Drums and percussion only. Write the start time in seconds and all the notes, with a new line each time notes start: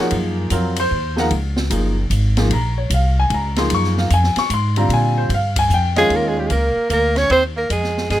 0.11 ride
0.50 hi-hat pedal, ride
0.76 ride
1.17 snare
1.31 ride
1.56 snare
1.70 hi-hat pedal, ride
2.11 hi-hat pedal, ride
2.37 snare, ride
2.51 ride
2.90 hi-hat pedal, ride
3.30 ride
3.56 snare, ride
3.70 ride
3.84 snare
3.97 snare
4.10 hi-hat pedal, ride
4.23 snare
4.36 snare, ride
4.50 hi-hat pedal, ride
4.76 ride
4.90 ride
5.30 ride
5.56 kick, ride
5.70 hi-hat pedal
5.96 snare, ride
6.10 ride
6.50 hi-hat pedal, ride
6.90 hi-hat pedal, ride
7.16 snare, ride
7.30 ride
7.70 hi-hat pedal, ride
7.84 snare
7.97 snare
8.10 snare, ride